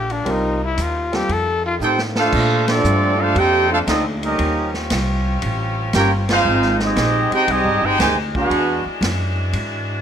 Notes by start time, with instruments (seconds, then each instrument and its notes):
Already playing: upright bass A#1, saxophone section D3 G3 A#3 F4, trumpet G4
0.10 trumpet D4, ride
0.25 upright bass C2, saxophone section C3 A#3 D#4, grand piano G3 C4 F4 A#4, ride
0.31 trumpet D#4
0.64 trumpet E4
0.77 upright bass D#2, hi-hat pedal, ride
0.82 trumpet F4
1.12 grand piano G3 C4 F4 A4, trumpet G4, snare, ride
1.28 upright bass F2, saxophone section D#3 A3 F4, ride
1.33 trumpet A4
1.66 trumpet F4
1.80 upright bass A2, trombone section C4 D#4 G4, trumpet section D#4 A4 C5 G5, hi-hat pedal
1.99 snare
2.15 trombone section A3 D4 F4, trumpet section D4 A4 C5 F5, snare
2.32 saxophone section A#2 C3 A3 D4, upright bass A#2, kick, crash
2.68 trombone section F3 A3 D4, trumpet section C4 F4 A4 D5, snare, ride
2.84 upright bass G2, hi-hat pedal
3.18 trombone section A3 D4 F4, trumpet section D4 A4 C5 F5
3.35 upright bass F2, trumpet section D#4 A4 C5 G5, trombone section G4, ride
3.69 trombone section A3 D4 F4, trumpet section D4 A4 C5 F5
3.86 upright bass D2, trumpet section C4 F4 A4 D#5, trombone section D#4, snare, hi-hat pedal, ride
4.22 trombone section G3 A#3 D#4, trumpet section C#4 G4 A#4 D#5, ride
4.39 upright bass D#2, saxophone section G3 C4 C#4 F4, ride
4.74 snare
4.90 upright bass C2, snare, hi-hat pedal, ride
5.42 upright bass A1, ride
5.93 upright bass G1, trombone section A#3 C#4 G4, trumpet section F4 A#4 C#5 G5, snare, hi-hat pedal, ride
6.29 trombone section F3 C4 F4, trumpet section D#4 G#4 C5 F5, snare, ride
6.45 upright bass G#1, saxophone section G#3 C4 D#4
6.62 snare
6.80 trombone section G#3 C4 D#4, trumpet section C4 G#4 D#5, snare
6.84 trumpet section G4
6.96 upright bass A#1, snare, hi-hat pedal, ride
7.31 trombone section C4 D#4 G4, trumpet section D#4 G#4 C5 G5, muted upright bass stroke, ride
7.47 upright bass C2, trombone section G3 C4 D#4, trumpet section C4 G4 G#4 D#5, ride
7.64 upright bass G#1
7.82 upright bass G1, trombone section C4 D#4 G4, trumpet section D#4 G#4 C5 G5
7.98 upright bass D2, trombone section C3 D#3 G#3, trumpet section D#4 G4 C5 G#5, snare, hi-hat pedal, ride
8.33 trombone section B3 D4 F#4, trumpet section D4 G#4 B4 F#5, kick
8.50 upright bass E2, saxophone section E3 D4 F#4, ride
8.85 muted upright bass stroke
9.01 upright bass F#2, snare, hi-hat pedal, ride
9.53 upright bass G#2, ride